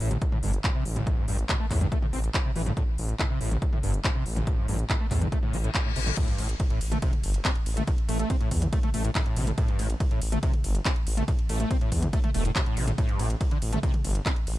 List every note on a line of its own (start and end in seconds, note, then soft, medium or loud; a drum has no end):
0.00 0.16 A1 medium
0.00 0.09 A2 loud
0.00 open hi-hat loud
0.11 0.17 A1 loud
0.11 closed hi-hat medium
0.11 mid tom loud
0.22 kick loud
0.22 closed hi-hat medium
0.32 0.38 A2 medium
0.32 mid tom medium
0.43 0.59 G1 medium
0.43 0.52 G2 loud
0.43 open hi-hat loud
0.54 closed hi-hat medium
0.64 0.70 A2 loud
0.64 kick loud
0.64 clap loud
0.64 closed hi-hat medium
0.75 0.84 C3 loud
0.85 1.01 A1 medium
0.85 open hi-hat loud
0.96 1.19 A1 loud
0.96 closed hi-hat medium
0.96 mid tom medium
1.07 kick loud
1.07 closed hi-hat medium
1.17 1.26 A2 medium
1.28 1.44 A1 loud
1.28 1.37 G2 loud
1.28 open hi-hat loud
1.39 closed hi-hat medium
1.49 1.55 A2 loud
1.49 kick loud
1.49 clap loud
1.49 closed hi-hat medium
1.60 1.66 A3 medium
1.71 1.87 E2 medium
1.71 1.79 A2 medium
1.71 kick medium
1.71 clap soft
1.71 open hi-hat loud
1.81 1.87 G2 loud
1.81 closed hi-hat medium
1.81 mid tom medium
1.92 1.98 A3 medium
1.92 kick loud
1.92 closed hi-hat medium
2.02 2.06 A2 medium
2.02 mid tom medium
2.13 2.29 A1 medium
2.13 2.19 C4 medium
2.13 open hi-hat loud
2.24 closed hi-hat medium
2.34 kick loud
2.34 clap loud
2.34 closed hi-hat medium
2.45 2.51 C3 medium
2.56 2.72 A1 loud
2.56 2.62 E3 loud
2.56 open hi-hat loud
2.66 2.72 G2 loud
2.66 closed hi-hat medium
2.66 mid tom medium
2.77 2.83 A2 medium
2.77 kick loud
2.77 closed hi-hat medium
2.98 3.14 A1 loud
2.98 open hi-hat loud
3.09 closed hi-hat medium
3.19 3.25 A2 loud
3.19 kick loud
3.19 clap loud
3.19 closed hi-hat medium
3.30 3.39 C3 loud
3.41 3.57 A1 medium
3.41 3.50 A2 loud
3.41 open hi-hat loud
3.51 3.57 A1 loud
3.51 closed hi-hat medium
3.51 mid tom medium
3.62 kick loud
3.62 closed hi-hat medium
3.73 3.79 A2 medium
3.73 mid tom medium
3.83 3.99 G1 medium
3.83 3.92 G2 loud
3.83 open hi-hat loud
3.94 closed hi-hat medium
4.04 4.10 A2 loud
4.04 kick loud
4.04 clap loud
4.04 closed hi-hat medium
4.15 4.24 C3 loud
4.26 4.42 A1 medium
4.26 open hi-hat loud
4.36 4.59 A1 loud
4.36 closed hi-hat medium
4.36 mid tom medium
4.47 kick loud
4.47 closed hi-hat medium
4.58 4.67 A2 medium
4.68 4.84 A1 loud
4.68 4.77 G2 loud
4.68 open hi-hat loud
4.79 closed hi-hat medium
4.89 4.95 A2 loud
4.89 kick loud
4.89 clap loud
4.89 closed hi-hat medium
5.00 5.06 A3 medium
5.11 5.27 E2 medium
5.11 5.20 A2 medium
5.11 kick medium
5.11 clap soft
5.11 open hi-hat loud
5.22 5.27 G2 loud
5.22 closed hi-hat medium
5.22 mid tom medium
5.32 5.38 A3 medium
5.32 kick loud
5.32 closed hi-hat medium
5.32 reverse cymbal medium
5.43 5.55 A2 medium
5.43 mid tom medium
5.53 5.70 A1 medium
5.53 5.57 A3 medium
5.53 open hi-hat loud
5.64 5.70 A2 medium
5.64 closed hi-hat medium
5.75 kick loud
5.75 clap loud
5.75 closed hi-hat medium
5.85 5.91 A2 medium
5.96 6.12 A1 loud
5.96 6.00 C3 medium
5.96 open hi-hat loud
6.07 6.10 A2 medium
6.07 closed hi-hat medium
6.07 mid tom medium
6.17 6.29 A2 loud
6.17 kick loud
6.17 closed hi-hat medium
6.17 crash loud
6.17 ride medium
6.17 sub drop medium
6.28 6.40 G2 loud
6.28 ride medium
6.38 6.55 A1 loud
6.38 6.47 A2 loud
6.38 open hi-hat loud
6.38 ride medium
6.49 closed hi-hat medium
6.49 ride medium
6.60 kick loud
6.60 closed hi-hat medium
6.60 ride medium
6.70 6.79 A2 loud
6.70 ride medium
6.81 6.97 A1 medium
6.81 open hi-hat loud
6.81 ride medium
6.92 6.98 A3 loud
6.92 closed hi-hat medium
6.92 mid tom medium
6.92 ride medium
7.02 7.11 C3 loud
7.02 kick loud
7.02 closed hi-hat medium
7.02 ride medium
7.13 mid tom medium
7.13 ride medium
7.23 7.40 G1 medium
7.23 open hi-hat loud
7.23 ride medium
7.34 closed hi-hat medium
7.34 ride medium
7.45 7.51 C4 medium
7.45 kick loud
7.45 clap loud
7.45 closed hi-hat medium
7.45 ride medium
7.56 ride medium
7.66 7.82 A1 medium
7.66 open hi-hat loud
7.66 ride medium
7.77 7.83 A3 loud
7.77 closed hi-hat medium
7.77 mid tom medium
7.77 ride medium
7.87 7.91 A2 medium
7.87 kick loud
7.87 closed hi-hat medium
7.87 ride medium
7.98 ride medium
8.09 8.25 A1 loud
8.09 8.18 A3 medium
8.09 open hi-hat loud
8.09 ride medium
8.19 8.28 A3 loud
8.19 closed hi-hat medium
8.19 ride medium
8.30 8.36 C4 medium
8.30 kick loud
8.30 closed hi-hat medium
8.30 ride medium
8.41 8.49 A2 medium
8.41 ride medium
8.51 8.67 E2 medium
8.51 kick medium
8.51 open hi-hat loud
8.51 ride medium
8.62 closed hi-hat medium
8.62 mid tom medium
8.62 ride medium
8.73 8.78 A3 medium
8.73 kick loud
8.73 closed hi-hat medium
8.73 ride medium
8.83 8.89 A3 loud
8.83 mid tom medium
8.83 ride medium
8.94 9.10 A1 medium
8.94 9.03 A3 medium
8.94 open hi-hat loud
8.94 ride medium
9.05 9.10 A2 medium
9.05 closed hi-hat medium
9.05 ride medium
9.15 9.21 A2 loud
9.15 kick loud
9.15 clap loud
9.15 closed hi-hat medium
9.15 ride medium
9.26 9.38 A2 medium
9.26 ride medium
9.36 9.52 A1 loud
9.36 9.45 C3 medium
9.36 open hi-hat loud
9.36 ride medium
9.47 9.51 A2 loud
9.47 closed hi-hat medium
9.47 mid tom medium
9.47 ride medium
9.58 9.70 A2 loud
9.58 kick loud
9.58 closed hi-hat medium
9.58 ride medium
9.68 9.81 G2 loud
9.68 ride medium
9.79 9.95 A1 loud
9.79 9.88 A2 loud
9.79 open hi-hat loud
9.79 ride medium
9.90 closed hi-hat medium
9.90 ride medium
10.00 kick loud
10.00 closed hi-hat medium
10.00 ride medium
10.11 10.20 A2 loud
10.11 ride medium
10.22 10.38 A1 medium
10.22 open hi-hat loud
10.22 ride medium
10.32 10.38 A3 loud
10.32 closed hi-hat medium
10.32 mid tom medium
10.32 ride medium
10.43 10.52 C3 loud
10.43 kick loud
10.43 closed hi-hat medium
10.43 ride medium
10.54 mid tom medium
10.54 ride medium
10.64 10.80 G1 medium
10.64 open hi-hat loud
10.64 ride medium
10.75 closed hi-hat medium
10.75 ride medium
10.85 10.91 C4 medium
10.85 kick loud
10.85 clap loud
10.85 closed hi-hat medium
10.85 ride medium
10.96 ride medium
11.07 11.23 A1 medium
11.07 open hi-hat loud
11.07 ride medium
11.17 11.23 A3 loud
11.17 closed hi-hat medium
11.17 mid tom medium
11.17 ride medium
11.28 11.32 A2 medium
11.28 kick loud
11.28 closed hi-hat medium
11.28 ride medium
11.39 ride medium
11.49 11.65 A1 loud
11.49 11.58 A3 medium
11.49 open hi-hat loud
11.49 ride medium
11.60 11.69 A3 loud
11.60 closed hi-hat medium
11.60 ride medium
11.71 11.76 C4 medium
11.71 kick loud
11.71 closed hi-hat medium
11.71 ride medium
11.81 11.90 A2 medium
11.81 ride medium
11.92 12.08 E2 medium
11.92 kick medium
11.92 open hi-hat loud
11.92 ride medium
12.02 closed hi-hat medium
12.02 mid tom loud
12.02 ride medium
12.13 12.19 A3 medium
12.13 kick loud
12.13 closed hi-hat medium
12.13 ride medium
12.24 12.30 A3 loud
12.24 mid tom medium
12.24 ride medium
12.34 12.50 E1 loud
12.34 12.43 A3 medium
12.34 open hi-hat loud
12.34 ride medium
12.45 12.51 A2 medium
12.45 closed hi-hat medium
12.45 ride medium
12.56 12.62 A2 loud
12.56 kick loud
12.56 clap loud
12.56 closed hi-hat medium
12.56 ride medium
12.66 12.79 A2 medium
12.66 ride medium
12.77 12.93 A1 medium
12.77 12.86 C3 medium
12.77 open hi-hat loud
12.77 ride medium
12.88 12.91 A2 loud
12.88 closed hi-hat medium
12.88 mid tom medium
12.88 ride medium
12.98 13.10 A2 loud
12.98 kick loud
12.98 closed hi-hat medium
12.98 ride medium
13.09 13.21 G2 loud
13.09 ride medium
13.19 13.35 A1 loud
13.19 13.28 A2 loud
13.19 open hi-hat loud
13.19 ride medium
13.30 closed hi-hat medium
13.30 ride medium
13.41 kick loud
13.41 closed hi-hat medium
13.41 ride medium
13.51 13.57 D3 loud
13.51 ride medium
13.62 13.78 A1 medium
13.62 open hi-hat loud
13.62 ride medium
13.73 13.78 A3 loud
13.73 closed hi-hat medium
13.73 mid tom loud
13.73 ride medium
13.83 13.92 C3 loud
13.83 kick loud
13.83 closed hi-hat medium
13.83 ride medium
13.94 mid tom medium
13.94 ride medium
14.04 14.21 G1 medium
14.04 open hi-hat loud
14.04 ride medium
14.15 closed hi-hat medium
14.15 ride medium
14.26 14.32 C4 medium
14.26 kick loud
14.26 clap loud
14.26 closed hi-hat medium
14.26 ride medium
14.36 ride medium
14.47 14.58 A1 medium
14.47 open hi-hat loud
14.47 ride medium